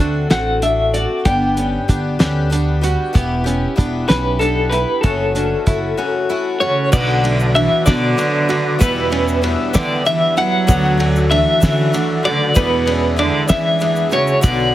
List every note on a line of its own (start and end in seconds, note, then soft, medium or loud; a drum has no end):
0.00 0.23 D2 medium
0.00 0.30 A3 medium
0.00 0.29 C4 medium
0.00 0.30 D4 medium
0.00 0.29 F#4 medium
0.00 0.29 A4 medium
0.30 1.05 A1 medium
0.30 0.62 D3 soft
0.30 0.61 A3 medium
0.30 0.62 C4 medium
0.30 0.62 F#4 medium
0.30 0.62 A4 medium
0.30 0.62 F#5 medium
0.30 snare medium
0.30 closed hi-hat medium
0.62 0.94 A3 medium
0.62 0.94 C4 medium
0.62 0.93 D4 medium
0.62 0.93 F#4 medium
0.62 0.92 A4 medium
0.62 0.92 E5 medium
0.62 closed hi-hat medium
0.94 1.25 C4 soft
0.94 1.25 F#4 soft
0.94 1.25 A4 soft
0.94 1.26 D5 medium
0.94 closed hi-hat medium
1.25 1.74 G1 loud
1.25 1.57 G2 medium
1.25 1.57 D3 medium
1.25 1.57 G3 medium
1.25 1.57 B3 medium
1.25 1.56 D4 medium
1.25 1.55 G4 medium
1.25 2.16 G5 medium
1.25 kick medium
1.25 closed hi-hat medium
1.56 1.87 G3 soft
1.56 1.88 B3 soft
1.56 1.88 C#4 medium
1.56 1.88 D4 soft
1.56 1.88 G4 soft
1.56 closed hi-hat medium
1.88 2.13 G1 medium
1.88 2.19 G3 medium
1.88 2.19 B3 medium
1.88 2.18 D4 medium
1.88 2.18 G4 medium
1.88 kick medium
1.88 closed hi-hat medium
2.19 2.94 D2 medium
2.19 2.52 G2 medium
2.19 2.52 D3 medium
2.19 2.49 G3 medium
2.19 2.50 B3 medium
2.19 2.51 C#4 medium
2.19 2.50 D4 medium
2.19 2.51 G4 medium
2.19 snare loud
2.19 closed hi-hat medium
2.50 2.82 G3 medium
2.50 2.81 B3 medium
2.50 2.81 D4 medium
2.50 2.80 G4 medium
2.50 closed hi-hat medium
2.81 3.12 G3 soft
2.81 3.12 B3 soft
2.81 3.14 D4 medium
2.81 3.14 F#4 medium
2.81 3.13 G4 medium
2.81 closed hi-hat medium
3.13 3.64 E1 medium
3.13 3.45 E3 medium
3.13 3.45 B3 medium
3.13 3.44 E4 medium
3.13 3.43 G4 medium
3.13 kick loud
3.13 closed hi-hat medium
3.44 3.75 B3 soft
3.44 3.77 C#4 medium
3.44 3.76 E4 soft
3.44 3.76 G4 medium
3.44 closed hi-hat medium
3.76 4.03 E1 medium
3.76 4.08 E3 medium
3.76 4.08 B3 medium
3.76 4.08 D4 medium
3.76 4.07 E4 medium
3.76 4.07 G4 medium
3.76 kick medium
3.76 closed hi-hat soft
4.08 4.83 B1 loud
4.08 4.38 E3 medium
4.08 4.39 B3 medium
4.08 4.40 C#4 medium
4.08 4.39 E4 medium
4.08 4.40 G4 medium
4.08 4.41 B4 medium
4.08 snare medium
4.08 closed hi-hat medium
4.39 4.71 E3 medium
4.39 4.72 B3 medium
4.39 4.72 D4 medium
4.39 4.71 E4 medium
4.39 4.70 G4 medium
4.39 4.73 A4 medium
4.39 closed hi-hat soft
4.70 5.03 B3 soft
4.70 5.04 E4 soft
4.70 5.03 G4 soft
4.70 5.03 B4 medium
4.70 closed hi-hat soft
5.01 5.53 F#1 loud
5.01 5.35 F#2 medium
5.01 5.35 C#3 medium
5.01 5.35 E3 medium
5.01 5.35 A3 medium
5.01 5.35 C#4 medium
5.01 5.34 F#4 medium
5.01 6.56 A4 medium
5.01 kick medium
5.01 closed hi-hat medium
5.35 5.65 E3 soft
5.35 5.66 A3 soft
5.35 5.66 C#4 soft
5.35 5.66 D4 medium
5.35 5.67 F#4 medium
5.35 closed hi-hat medium
5.66 5.91 F#1 medium
5.66 5.97 E3 soft
5.66 5.97 A3 medium
5.66 5.97 C#4 medium
5.66 5.98 E4 medium
5.66 5.96 F#4 medium
5.66 kick medium
5.66 closed hi-hat medium
5.97 6.30 F#2 medium
5.97 6.30 C#3 medium
5.97 6.28 E3 medium
5.97 6.29 A3 medium
5.97 6.30 C#4 medium
5.97 6.29 F#4 medium
6.29 6.61 E3 medium
6.29 6.60 A3 medium
6.29 6.60 C#4 medium
6.29 6.60 E4 medium
6.29 6.59 F#4 medium
6.60 6.91 C#3 medium
6.60 6.91 E3 soft
6.60 6.92 A3 soft
6.60 6.92 C#4 medium
6.60 6.92 F#4 medium
6.60 6.90 C#5 medium
6.92 8.76 B1 medium
6.92 7.66 B1 loud
6.92 7.24 B2 medium
6.92 8.77 B2 medium
6.92 7.52 D3 medium
6.92 7.11 F#3 medium
6.92 7.24 F#3 medium
6.92 7.12 B3 medium
6.92 7.24 B3 medium
6.92 7.12 D4 medium
6.92 7.23 D4 medium
6.92 7.22 F#4 medium
6.92 10.65 B4 medium
6.92 7.12 B4 medium
6.92 7.55 D5 loud
6.92 7.12 D5 loud
6.92 8.79 F#5 medium
6.92 8.79 D6 medium
6.92 kick loud
6.92 crash loud
6.92 shaker medium
7.23 7.43 F#3 medium
7.23 7.43 B3 medium
7.23 7.54 B3 soft
7.23 7.43 D4 medium
7.23 7.55 D4 soft
7.23 7.55 F#4 medium
7.23 7.43 B4 medium
7.23 7.44 E5 medium
7.23 ride medium
7.40 shaker soft
7.54 7.85 E3 medium
7.54 7.86 F#3 medium
7.54 7.74 F#3 medium
7.54 7.86 B3 medium
7.54 7.74 B3 medium
7.54 7.75 D4 medium
7.54 7.85 D4 medium
7.54 7.85 F#4 medium
7.54 7.75 B4 medium
7.54 7.75 D5 medium
7.54 7.85 E5 medium
7.54 ride medium
7.86 8.12 B2 loud
7.86 8.18 B2 medium
7.86 8.77 D3 medium
7.86 8.05 F#3 medium
7.86 8.16 F#3 medium
7.86 8.06 B3 medium
7.86 8.16 B3 medium
7.86 8.17 D4 medium
7.86 8.06 D4 medium
7.86 8.18 F#4 medium
7.86 8.06 B4 medium
7.86 8.83 D5 medium
7.86 8.06 D5 medium
7.86 kick medium
7.86 snare loud
7.86 ride medium
7.86 shaker medium
8.17 8.49 F#3 medium
8.17 8.37 F#3 medium
8.17 8.49 B3 medium
8.17 8.37 B3 medium
8.17 8.48 D4 medium
8.17 8.37 D4 medium
8.17 8.47 F#4 medium
8.17 8.38 B4 medium
8.17 8.38 D5 medium
8.17 ride medium
8.17 shaker soft
8.48 8.68 F#3 medium
8.48 8.68 B3 medium
8.48 8.78 B3 soft
8.48 8.79 D4 medium
8.48 8.69 D4 medium
8.48 8.79 F#4 medium
8.48 8.69 B4 medium
8.48 8.69 D5 medium
8.48 ride medium
8.79 9.54 E2 loud
8.79 10.65 E2 medium
8.79 9.47 B2 medium
8.79 9.11 E3 medium
8.79 10.65 E3 medium
8.79 9.00 G3 medium
8.79 9.11 B3 medium
8.79 9.00 B3 medium
8.79 9.11 E4 medium
8.79 9.00 E4 medium
8.79 9.09 G4 medium
8.79 9.47 B4 medium
8.79 9.00 B4 medium
8.79 10.66 E5 medium
8.79 9.01 E5 loud
8.79 10.66 E6 medium
8.79 kick loud
8.79 ride medium
8.79 shaker medium
9.10 9.30 G3 medium
9.10 9.31 B3 medium
9.10 9.41 B3 soft
9.10 9.42 C#4 medium
9.10 9.42 E4 soft
9.10 9.31 E4 medium
9.10 9.42 G4 medium
9.10 9.31 B4 medium
9.10 9.32 C#5 medium
9.10 ride medium
9.28 shaker soft
9.42 9.74 E3 medium
9.42 9.62 G3 medium
9.42 9.62 B3 medium
9.42 9.73 B3 medium
9.42 9.74 D4 medium
9.42 9.62 E4 medium
9.42 9.73 E4 medium
9.42 9.72 G4 medium
9.42 9.62 B4 medium
9.42 9.63 E5 medium
9.42 ride medium
9.73 10.04 D3 medium
9.73 9.99 E3 loud
9.73 10.04 E3 medium
9.73 9.93 G3 medium
9.73 9.93 B3 medium
9.73 10.04 B3 medium
9.73 9.93 E4 medium
9.73 10.05 E4 medium
9.73 10.05 G4 medium
9.73 9.93 B4 medium
9.73 10.06 D5 loud
9.73 9.94 E5 medium
9.73 kick medium
9.73 snare loud
9.73 ride medium
9.73 shaker loud
10.05 10.37 E3 medium
10.05 10.35 E3 medium
10.05 10.24 G3 medium
10.05 10.25 B3 medium
10.05 10.36 B3 medium
10.05 10.37 D4 medium
10.05 10.25 E4 medium
10.05 10.35 E4 medium
10.05 10.38 G4 medium
10.05 10.25 B4 medium
10.05 10.25 E5 medium
10.05 10.37 E5 loud
10.05 ride medium
10.05 shaker soft
10.36 11.28 F#3 loud
10.36 10.56 G3 medium
10.36 10.56 B3 medium
10.36 10.67 B3 soft
10.36 10.67 E4 medium
10.36 10.56 E4 medium
10.36 10.56 B4 medium
10.36 10.57 E5 medium
10.36 11.30 F#5 loud
10.36 ride medium
10.67 12.52 D2 medium
10.67 11.42 D2 loud
10.67 10.99 D3 medium
10.67 12.52 D3 medium
10.67 10.99 F#3 medium
10.67 10.87 F#3 medium
10.67 10.87 A3 medium
10.67 10.98 A3 medium
10.67 10.99 B3 medium
10.67 10.98 D4 medium
10.67 10.87 D4 medium
10.67 10.96 F#4 medium
10.67 12.54 A4 medium
10.67 10.88 A4 medium
10.67 10.88 D5 medium
10.67 12.54 F#5 medium
10.67 kick loud
10.67 ride medium
10.67 shaker loud
10.98 11.18 F#3 medium
10.98 11.18 A3 medium
10.98 11.29 A3 soft
10.98 11.30 C#4 medium
10.98 11.30 D4 medium
10.98 11.19 D4 medium
10.98 11.30 F#4 medium
10.98 11.19 A4 medium
10.98 11.19 C#5 medium
10.98 ride medium
11.16 shaker soft
11.30 12.21 E3 medium
11.30 11.60 F#3 medium
11.30 11.50 F#3 medium
11.30 11.60 A3 medium
11.30 11.50 A3 medium
11.30 11.50 D4 medium
11.30 11.59 D4 medium
11.30 11.59 F#4 medium
11.30 11.50 A4 medium
11.30 11.51 D5 medium
11.30 12.25 E5 loud
11.30 ride medium
11.60 11.93 D3 medium
11.60 11.87 D3 loud
11.60 11.91 F#3 medium
11.60 11.81 F#3 medium
11.60 11.91 A3 medium
11.60 11.81 A3 medium
11.60 11.93 C#4 medium
11.60 11.92 D4 medium
11.60 11.82 D4 medium
11.60 11.92 F#4 medium
11.60 11.82 A4 medium
11.60 11.82 D5 medium
11.60 kick medium
11.60 snare loud
11.60 ride medium
11.60 shaker medium
11.92 12.24 F#3 medium
11.92 12.12 F#3 medium
11.92 12.23 A3 medium
11.92 12.12 A3 medium
11.92 12.23 D4 medium
11.92 12.13 D4 medium
11.92 12.22 F#4 medium
11.92 12.13 A4 medium
11.92 12.13 D5 medium
11.92 ride medium
11.92 shaker soft
12.23 12.53 D3 medium
12.23 12.44 F#3 medium
12.23 12.54 A3 soft
12.23 12.44 A3 medium
12.23 12.54 D4 medium
12.23 12.44 D4 medium
12.23 12.55 F#4 medium
12.23 12.45 A4 medium
12.23 12.45 B4 medium
12.23 12.57 D5 loud
12.23 ride medium
12.54 13.29 E2 loud
12.54 14.40 E2 medium
12.54 13.15 B2 medium
12.54 12.86 E3 medium
12.54 14.40 E3 medium
12.54 12.75 G#3 medium
12.54 12.86 B3 medium
12.54 12.85 D4 medium
12.54 12.75 D4 medium
12.54 12.75 E4 medium
12.54 12.84 G#4 medium
12.54 14.42 G#4 medium
12.54 13.15 B4 medium
12.54 12.76 B4 medium
12.54 12.76 D5 loud
12.54 14.42 E5 medium
12.54 kick loud
12.54 ride medium
12.54 shaker medium
12.86 13.06 G#3 medium
12.86 13.16 B3 medium
12.86 13.18 C#4 medium
12.86 13.17 D4 medium
12.86 13.07 D4 medium
12.86 13.07 E4 medium
12.86 13.17 G#4 medium
12.86 13.07 B4 medium
12.86 ride medium
12.90 13.07 D5 medium
13.16 13.47 D3 medium
13.16 13.48 E3 medium
13.16 13.37 G#3 medium
13.16 13.48 B3 medium
13.16 13.47 D4 medium
13.16 13.38 D4 medium
13.16 13.38 E4 medium
13.16 13.46 G#4 medium
13.16 13.38 B4 medium
13.16 13.48 D5 medium
13.16 13.38 D5 medium
13.16 ride medium
13.48 13.78 E3 medium
13.48 13.74 E3 medium
13.48 14.08 E3 medium
13.48 13.68 G#3 medium
13.48 13.79 B3 medium
13.48 13.80 C#4 medium
13.48 13.79 D4 medium
13.48 13.69 D4 medium
13.48 13.80 G#4 medium
13.48 13.69 B4 medium
13.48 13.69 D5 medium
13.48 14.08 E5 loud
13.48 kick medium
13.48 snare loud
13.48 ride medium
13.48 shaker loud
13.79 14.11 E3 medium
13.79 14.00 G#3 medium
13.79 14.10 B3 medium
13.79 14.12 D4 medium
13.79 14.00 D4 medium
13.79 14.00 E4 medium
13.79 14.08 G#4 medium
13.79 14.00 B4 medium
13.79 14.01 D5 medium
13.79 ride medium
13.79 shaker soft
13.96 shaker soft
14.09 14.41 C#3 medium
14.09 14.31 G#3 medium
14.09 14.41 B3 soft
14.09 14.31 D4 medium
14.09 14.31 E4 medium
14.09 14.43 F#4 medium
14.09 14.42 G#4 soft
14.09 14.32 B4 medium
14.09 14.43 C#5 loud
14.09 ride medium
14.09 shaker soft
14.14 14.32 E5 medium
14.27 shaker soft
14.41 14.75 B1 loud
14.41 14.75 B1 medium
14.41 14.73 B2 medium
14.41 14.75 B2 medium
14.41 14.75 D3 medium
14.41 14.73 F#3 medium
14.41 14.62 F#3 medium
14.41 14.73 B3 medium
14.41 14.62 B3 medium
14.41 14.72 D4 medium
14.41 14.63 D4 medium
14.41 14.71 F#4 medium
14.41 14.75 B4 medium
14.41 14.63 B4 medium
14.41 14.75 D5 medium
14.41 14.63 D5 medium
14.41 14.75 F#5 medium
14.41 kick loud
14.41 ride medium
14.41 shaker loud